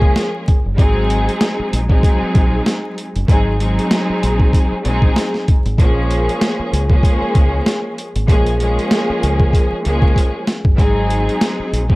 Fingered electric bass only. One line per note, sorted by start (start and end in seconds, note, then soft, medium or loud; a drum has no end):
0.66 0.79 F#1 medium
0.79 1.27 G#1 loud
1.59 muted fingered electric bass stroke soft
1.73 1.97 A#1 loud
2.22 muted fingered electric bass stroke soft
2.35 2.60 A#1 medium
3.16 3.26 F#1 medium
3.29 3.77 G#1 loud
4.10 muted fingered electric bass stroke soft
4.23 4.47 A#1 loud
4.72 muted fingered electric bass stroke soft
4.86 5.10 A#1 loud
5.66 5.76 G#1 loud
5.79 6.27 A#1 loud
6.59 muted fingered electric bass stroke medium
6.73 6.97 C#2 loud
7.22 muted fingered electric bass stroke soft
7.35 7.60 C#2 medium
8.16 8.26 G#1 medium
8.29 8.77 A#1 loud
9.10 muted fingered electric bass stroke soft
9.23 9.47 C#2 loud
9.72 muted fingered electric bass stroke soft
9.86 10.10 C#2 medium
10.65 10.76 F#1 medium
10.79 11.27 G#1 loud
11.59 muted fingered electric bass stroke soft
11.73 11.95 A#1 loud